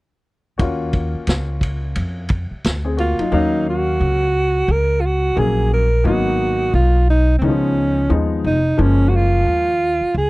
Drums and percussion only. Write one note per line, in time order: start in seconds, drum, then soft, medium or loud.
0.59 kick loud
0.59 ride medium
0.93 kick medium
0.93 ride soft
1.27 snare medium
1.27 hi-hat pedal soft
1.27 ride medium
1.61 kick medium
1.61 ride medium
1.96 ride medium
2.29 kick medium
2.29 ride medium
2.64 snare loud
2.64 hi-hat pedal soft
2.64 ride medium
2.98 ride soft
3.19 ride soft